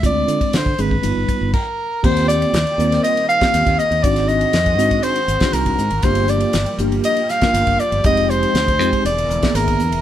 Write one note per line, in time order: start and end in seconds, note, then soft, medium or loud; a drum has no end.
0.03 0.23 D2 medium
0.03 0.51 G#3 medium
0.03 0.51 C4 medium
0.03 0.51 D4 medium
0.03 0.51 F4 medium
0.03 0.57 D5 medium
0.03 kick medium
0.03 hi-hat pedal medium
0.03 ride medium
0.28 0.38 D3 medium
0.28 hi-hat pedal medium
0.28 ride soft
0.41 kick medium
0.41 ride medium
0.53 0.73 D3 medium
0.53 0.82 C5 medium
0.53 snare loud
0.53 hi-hat pedal medium
0.53 ride medium
0.66 kick medium
0.78 0.98 G#1 medium
0.78 0.95 G#3 medium
0.78 0.94 C4 medium
0.78 0.95 D4 medium
0.78 0.95 G#4 medium
0.78 1.53 B4 medium
0.78 hi-hat pedal medium
0.78 ride medium
0.91 kick medium
1.02 1.14 G1 medium
1.02 1.53 G3 medium
1.02 1.53 B3 medium
1.02 1.53 D#4 medium
1.02 1.53 F4 medium
1.02 hi-hat pedal medium
1.02 ride medium
1.16 1.26 G1 medium
1.28 kick medium
1.28 hi-hat pedal medium
1.28 ride medium
1.41 1.51 G1 medium
1.54 2.06 A#4 medium
1.54 kick medium
1.54 crash medium
2.03 2.43 D#2 medium
2.03 6.01 D#3 medium
2.03 4.02 G3 medium
2.03 2.51 A#3 medium
2.03 4.02 A#3 medium
2.03 2.51 C4 medium
2.03 4.02 C4 medium
2.03 2.51 F4 medium
2.03 4.02 G4 medium
2.03 2.52 G4 medium
2.03 2.27 C5 medium
2.03 kick loud
2.03 crash medium
2.17 snare soft
2.17 ride medium
2.28 3.00 D5 medium
2.28 hi-hat pedal medium
2.42 ride medium
2.53 2.64 D#2 medium
2.53 snare loud
2.53 hi-hat pedal medium
2.53 ride medium
2.67 ride soft
2.78 2.98 D#2 medium
2.78 3.19 A#3 medium
2.78 3.19 C4 medium
2.78 3.19 F4 medium
2.78 3.19 A#4 medium
2.78 hi-hat pedal medium
2.92 snare soft
2.92 ride medium
3.03 3.27 D#5 medium
3.03 hi-hat pedal medium
3.03 ride medium
3.17 ride soft
3.28 3.80 F5 medium
3.28 hi-hat pedal medium
3.41 3.82 A#3 medium
3.41 3.81 C4 medium
3.41 3.82 F4 medium
3.41 3.82 G4 medium
3.41 kick medium
3.41 snare medium
3.41 ride soft
3.54 3.64 D#2 medium
3.54 snare soft
3.54 hi-hat pedal medium
3.54 ride medium
3.66 3.76 D#2 medium
3.66 kick medium
3.66 ride soft
3.78 4.04 D#5 medium
3.78 hi-hat pedal medium
3.91 4.01 D#2 medium
3.91 ride medium
4.03 4.43 G#1 medium
4.03 6.03 G#3 medium
4.03 6.03 C4 medium
4.03 4.52 C4 medium
4.03 4.52 D4 medium
4.03 4.52 D#4 medium
4.03 6.03 F#4 medium
4.03 4.52 F#4 medium
4.03 4.29 D5 medium
4.03 kick loud
4.03 hi-hat pedal medium
4.03 ride medium
4.16 snare soft
4.16 ride medium
4.28 5.05 D#5 medium
4.28 hi-hat pedal medium
4.41 ride medium
4.53 4.78 F2 medium
4.53 snare loud
4.53 hi-hat pedal medium
4.53 ride medium
4.66 kick medium
4.66 ride soft
4.78 4.98 G#2 medium
4.78 5.19 C4 medium
4.78 5.19 D4 medium
4.78 5.19 D#4 medium
4.78 5.19 F#4 medium
4.78 hi-hat pedal medium
4.91 kick medium
4.91 ride medium
5.03 5.55 C5 medium
5.03 hi-hat pedal medium
5.03 ride medium
5.16 ride medium
5.28 5.39 G#1 medium
5.28 hi-hat pedal medium
5.40 5.82 C4 medium
5.40 5.82 D4 medium
5.40 5.82 D#4 medium
5.40 5.82 F#4 medium
5.40 kick medium
5.40 snare loud
5.40 ride medium
5.53 5.73 C2 medium
5.53 6.05 A#4 medium
5.53 snare soft
5.53 hi-hat pedal medium
5.53 ride medium
5.66 kick medium
5.66 ride medium
5.78 5.89 G#2 medium
5.78 hi-hat pedal medium
5.90 6.01 G#1 medium
5.90 ride medium
6.02 6.43 G1 medium
6.02 9.02 F3 medium
6.02 8.02 G3 medium
6.02 8.02 A#3 medium
6.02 6.52 A#3 medium
6.02 6.53 D4 medium
6.02 6.53 F4 medium
6.02 9.02 G4 medium
6.02 6.52 G4 medium
6.02 6.31 C5 medium
6.02 kick loud
6.02 hi-hat pedal medium
6.02 ride medium
6.15 ride medium
6.28 6.78 D5 medium
6.28 hi-hat pedal medium
6.40 ride medium
6.53 6.64 G1 medium
6.53 snare loud
6.53 hi-hat pedal medium
6.53 ride medium
6.66 ride medium
6.78 6.99 G1 medium
6.78 7.20 A#3 medium
6.78 7.20 D4 medium
6.78 7.20 F4 medium
6.78 7.20 G4 medium
6.78 hi-hat pedal medium
6.92 ride medium
7.04 7.31 D#5 medium
7.04 hi-hat pedal medium
7.04 ride medium
7.17 ride medium
7.29 7.81 F5 loud
7.29 snare soft
7.29 hi-hat pedal medium
7.41 7.82 A#3 medium
7.41 7.82 D4 medium
7.41 7.82 F4 medium
7.41 7.82 A#4 medium
7.41 kick medium
7.41 snare medium
7.41 ride medium
7.54 7.64 G1 medium
7.54 snare soft
7.54 hi-hat pedal medium
7.54 ride medium
7.67 7.77 G1 medium
7.67 kick medium
7.67 ride medium
7.79 8.05 D5 medium
7.79 hi-hat pedal medium
7.92 8.02 G1 medium
7.92 ride medium
8.04 8.44 F1 medium
8.04 10.02 G#3 medium
8.04 8.53 G#3 medium
8.04 9.04 C4 medium
8.04 8.53 C4 medium
8.04 9.04 D#4 medium
8.04 8.53 D#4 medium
8.04 8.53 G4 medium
8.04 8.31 D#5 loud
8.04 kick loud
8.04 hi-hat pedal medium
8.04 ride medium
8.17 ride medium
8.30 9.05 C5 loud
8.30 hi-hat pedal medium
8.43 ride medium
8.54 8.79 D2 medium
8.54 snare medium
8.54 hi-hat pedal medium
8.54 ride medium
8.68 kick medium
8.68 ride medium
8.79 8.89 F2 medium
8.79 9.05 G#3 medium
8.79 9.05 C4 medium
8.79 9.05 D#4 medium
8.79 9.05 G4 medium
8.79 hi-hat pedal medium
8.93 kick medium
8.93 ride medium
9.04 9.25 E1 medium
9.04 10.02 B2 medium
9.04 10.02 D3 medium
9.04 10.02 E4 medium
9.04 10.02 A#4 medium
9.04 9.57 D5 medium
9.04 hi-hat pedal medium
9.04 ride medium
9.18 ride medium
9.29 9.40 E1 medium
9.29 hi-hat pedal medium
9.42 9.83 A#3 medium
9.42 9.83 B3 medium
9.42 9.83 D4 medium
9.42 9.83 G#4 medium
9.42 kick medium
9.42 snare loud
9.42 ride medium
9.55 9.75 G#1 medium
9.55 10.02 A#4 medium
9.55 snare soft
9.55 hi-hat pedal medium
9.55 ride medium
9.68 kick medium
9.68 ride medium
9.80 9.90 E2 medium
9.80 hi-hat pedal medium
9.92 10.02 E1 medium
9.92 ride medium